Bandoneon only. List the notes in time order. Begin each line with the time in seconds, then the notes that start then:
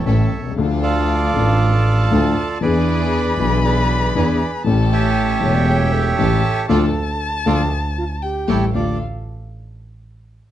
0.05 A4 C#5 E5
0.83 F4 A4 D5
2.62 G#4 B4 D5
3.64 G#4 B4 D5
4.16 G#4 B4 D5
4.92 G4 C#5 E5
6.69 F4 A4 D5
7.46 F4 A4 D5
8.49 G4 A4 C#5
8.75 D5